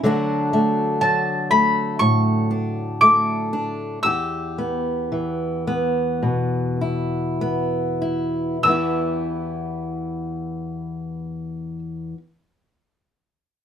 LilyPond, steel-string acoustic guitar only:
\new Staff \with { instrumentName = "Steel-string acoustic guitar" } { \time 4/4 \key e \minor \tempo 4 = 53 << { <fis a d' fis'>8 a4 a4 d'8 a8 d'8 | g'8 b4 b4 e'8 b8 e'8 | <e b e' g'>1 | } \\ { d4 fis4 a,2 | e,4 e4 b,2 | e,1 | } >> }